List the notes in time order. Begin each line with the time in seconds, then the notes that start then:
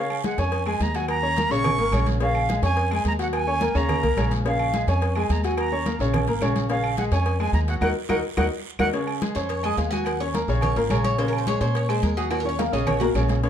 Already playing: C#3 C#4 C#5 F5
0.10 high conga, low agogo, claves
0.24 G#3 G#4 F#5 G#5, cowbell, high conga, short guiro
0.38 F2 C#4 C#5 G#5 C#6, cowbell, low agogo, short guiro
0.52 cowbell, high conga, low agogo, long guiro
0.66 G#3 G#4 G#5, high conga, low agogo, claves
0.80 D#2 A#5, cowbell, high conga, low timbale, short guiro
0.94 F#3 F#4 F#5 G#5, cowbell, low agogo, short guiro
1.08 A#5, cowbell, high conga, low agogo, long guiro, claves
1.23 C#4 C#5 C#6, high conga
1.36 A#3 A#4 A#5, cowbell, high conga, low agogo, short guiro
1.50 A#1 C#3 C#4 C#5 C#6, high conga, short guiro
1.64 cowbell, high conga, low conga, low agogo, long guiro, claves
1.78 G#1 A#3 A#4 A#5, cowbell, high conga
1.92 A#1 C#3 C#4 C#5, cowbell, high conga, low agogo, short guiro, claves
2.06 cowbell, high conga, short guiro
2.20 C#3 C#4 C#5 F5, cowbell, high conga, low agogo, long guiro
2.35 high conga, low agogo, claves
2.49 G#3 G#4 G#5, cowbell, high conga, short guiro
2.62 F2 C#4 C#5 G#5 C#6, cowbell, low agogo, short guiro
2.77 cowbell, high conga, low agogo, long guiro
2.91 G#3 G#4 G#5, high conga, low agogo, claves
3.05 D#2 A#5, cowbell, high conga, low timbale, short guiro
3.19 F#3 F#4 F#5, cowbell, low agogo, short guiro
3.33 G#5, cowbell, high conga, low agogo, long guiro, claves
3.47 C#4 C#5 C#6, high conga
3.61 A#3 A#4 A#5, cowbell, high conga, low agogo, short guiro
3.75 D#2 C#3 C#4 C#5 A#5, high conga, short guiro
3.89 cowbell, high conga, low conga, low agogo, long guiro, claves
4.03 C2 A#3 A#4 A#5, cowbell, high conga, low conga
4.17 A#1 C#3 C#4 C#5, cowbell, high conga, low agogo, short guiro, claves
4.31 cowbell, high conga, short guiro
4.45 C#3 C#4 C#5 F5, cowbell, high conga, low agogo, long guiro
4.59 high conga, low agogo, claves
4.74 G#3 G#4 G#5, cowbell, high conga, short guiro
4.87 F2 C#4 C#5 G#5 C#6, cowbell, low agogo, short guiro
5.02 cowbell, high conga, low agogo, long guiro
5.15 G#3 G#4 G#5, high conga, low agogo, claves
5.29 D#2 A#5, cowbell, high conga, low timbale, short guiro
5.43 F#3 F#4 F#5 G#5, cowbell, low agogo, short guiro
5.57 A#5, cowbell, high conga, low agogo, long guiro, claves
5.72 C#4 C#5 C#6, high conga
5.86 A#3 A#4 A#5, cowbell, high conga, low agogo, short guiro
5.99 A#1 C#3 C#4 C#5, high conga, short guiro
6.14 cowbell, high conga, low conga, low agogo, long guiro, claves
6.27 G#1 A#3 A#4 A#5, cowbell, high conga
6.41 A#1 C#3 C#4 C#5, cowbell, high conga, low timbale, low agogo, short guiro, claves
6.55 cowbell, high conga, short guiro
6.69 C#3 C#4 C#5 F5, cowbell, high conga, low agogo, long guiro
6.84 high conga, low agogo, claves
6.98 G#3 G#4 F#5 G#5, cowbell, high conga, short guiro
7.11 F2 C#4 C#5 G#5 C#6, cowbell, low agogo, short guiro
7.26 cowbell, high conga, low agogo, long guiro
7.40 G#3 G#4 G#5, high conga, low agogo, claves
7.53 D#2 A#5, cowbell, high conga, low timbale, short guiro
7.68 F#3 F#4 F#5, cowbell, low agogo, short guiro
7.81 D#2 D#4 F#4 A#4 F#5, cowbell, high conga, high timbale, long guiro, claves
8.09 D#2 D#4 F#4 A#4 F#5, cowbell, high conga, high timbale, long guiro, claves
8.37 D#2 D#4 F#4 A#4 F#5, cowbell, high conga, high timbale, long guiro, claves
8.79 D#2 D#4 F#4 A#4 F#5, cowbell, high conga, high timbale, long guiro, claves
8.93 C#3 C#4 C#5, cowbell, low agogo, long guiro
9.07 high conga, low agogo, claves
9.22 G#3 G#4 G#5, cowbell, high conga, short guiro
9.35 F2 C#4 C5 C#5 C#6, cowbell, low agogo, short guiro
9.49 C#5, cowbell, high conga, low agogo, long guiro
9.63 G#3 G#4 D#5 G#5, high conga, low agogo, claves
9.77 D#2 F5, cowbell, high conga, low timbale, short guiro
9.91 F#3 F#4 F#5 G#5, cowbell, high conga, low agogo, short guiro
10.05 F#5, cowbell, high conga, low agogo, long guiro, claves
10.20 C#4 C#5 C#6, high conga
10.34 A#3 A#4 A#5, cowbell, high conga, low agogo, short guiro
10.48 A#1 C#3 C#4 C#5, high conga, short guiro
10.61 C#5, cowbell, high conga, low conga, low agogo, long guiro, claves
10.76 G#1 A#3 F4 A#4 A#5, cowbell, high conga
10.90 A#1 C#3 C#4 A#4 C#5, cowbell, high conga, low agogo, short guiro, claves
11.04 C#5, cowbell, high conga, short guiro
11.18 C#3 C#4 C5 C#5, cowbell, low agogo, long guiro
11.28 A#4
11.33 high conga, low agogo, claves
11.38 C5
11.47 G#3 G#4 C#5 G#5, cowbell, high conga, short guiro
11.60 A#2 C#4 C5 C#5 C#6, cowbell, low agogo, short guiro
11.75 C#5, cowbell, high conga, low agogo, long guiro
11.89 G#3 G#4 C5 G#5, high conga, low agogo, claves
12.02 D#2 A#4, cowbell, high conga, short guiro
12.17 F#3 F#4 G#4 F#5, cowbell, low agogo, short guiro
12.30 F#4, cowbell, high conga, high timbale, low agogo, long guiro, claves
12.40 A#4
12.45 C#4 C#5 C#6, high conga, high timbale
12.59 A#3 A#4 F5 A#5, cowbell, high conga, low timbale, low agogo, short guiro
12.73 A#1 C#3 C#4 C#5 D#5, high conga, low timbale, short guiro
12.87 C#5, cowbell, high conga, low conga, low agogo, long guiro, claves
13.00 A#3 F#4 A#4 A#5, cowbell, high conga, low timbale
13.15 A#1 C#3 C#4 C#5, cowbell, high conga, low agogo, short guiro, claves
13.28 cowbell, high conga, low timbale, short guiro
13.43 C#3 C#4 C#5, cowbell, high conga, low agogo, long guiro